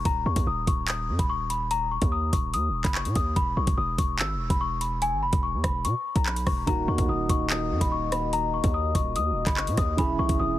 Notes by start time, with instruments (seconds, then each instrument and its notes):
0.05 808-style bass D#1, celesta A#5, kick, closed hi-hat
0.26 808-style bass D#2, celesta C#6
0.36 808-style bass D#2, kick, closed hi-hat
0.47 808-style bass D#1, celesta D#6
0.67 808-style bass D#1, celesta C#6, kick, closed hi-hat
0.88 celesta D#6, clap, closed hi-hat
1.09 808-style bass F#2
1.19 808-style bass D#1, celesta B5, kick, closed hi-hat
1.30 celesta C#6
1.50 celesta B5, closed hi-hat
1.71 celesta A#5, closed hi-hat
1.91 celesta C#6
2.02 808-style bass D#2, kick, closed hi-hat
2.12 celesta D#6
2.33 808-style bass D#1, celesta C#6, kick, closed hi-hat
2.54 808-style bass D#2, celesta D#6, closed hi-hat
2.69 808-style bass D#1
2.84 808-style bass F#1, celesta B5, kick, clap, closed hi-hat
2.95 celesta C#6, clap
3.05 808-style bass A#2, closed hi-hat
3.15 808-style bass D#2, celesta D#6, kick, closed hi-hat
3.36 808-style bass E1, celesta B5, kick, closed hi-hat
3.57 808-style bass B1, celesta C#6
3.67 808-style bass E1, kick, closed hi-hat
3.78 808-style bass E1, celesta D#6
3.98 808-style bass E1, celesta C#6, kick, closed hi-hat
4.19 808-style bass G#1, celesta E6, clap, closed hi-hat
4.35 808-style bass E1
4.50 808-style bass E1, celesta B5, kick, closed hi-hat
4.61 celesta C#6
4.81 celesta B5, closed hi-hat
5.02 celesta G#5, closed hi-hat
5.12 808-style bass G#1
5.23 808-style bass E1, celesta B5
5.33 808-style bass E1, kick, closed hi-hat
5.43 celesta C#6
5.54 808-style bass E2
5.64 808-style bass E1, celesta B5, kick, cross-stick, closed hi-hat
5.85 808-style bass B2, celesta C#6, closed hi-hat
6.16 808-style bass B1, celesta A#5, kick, closed hi-hat
6.26 celesta B5, clap
6.36 closed hi-hat
6.46 808-style bass E1, celesta C#6, kick, cross-stick, open hi-hat
6.67 808-style bass D#1, grand piano D#3 A#3 F#4, french horn section A#3 F#4 D#5, celesta A#5, kick, closed hi-hat
6.88 808-style bass D#2, celesta C#6
6.98 808-style bass D#2, kick, closed hi-hat
7.09 808-style bass D#1, celesta D#6
7.29 808-style bass D#1, celesta C#6, kick, closed hi-hat
7.50 celesta D#6, clap, closed hi-hat
7.71 808-style bass F#2
7.81 808-style bass D#1, celesta B5, kick, closed hi-hat
7.92 celesta C#6
8.12 celesta B5, cross-stick, closed hi-hat
8.33 celesta A#5, closed hi-hat
8.54 celesta C#6
8.64 808-style bass D#2, kick, closed hi-hat
8.74 celesta D#6
8.95 808-style bass D#1, celesta C#6, kick, closed hi-hat
9.16 808-style bass D#2, celesta D#6, closed hi-hat
9.31 808-style bass D#1
9.47 808-style bass F#1, celesta B5, kick, clap, closed hi-hat
9.57 celesta C#6, clap
9.67 808-style bass A#2, closed hi-hat
9.77 808-style bass D#2, celesta D#6, kick, cross-stick, closed hi-hat
9.97 808-style bass E1, grand piano E3 C#4 G#4, french horn section C#4 G#4 E5, celesta B5, kick, closed hi-hat
10.19 808-style bass B1, celesta C#6
10.29 808-style bass E1, kick, closed hi-hat
10.40 808-style bass E1, celesta D#6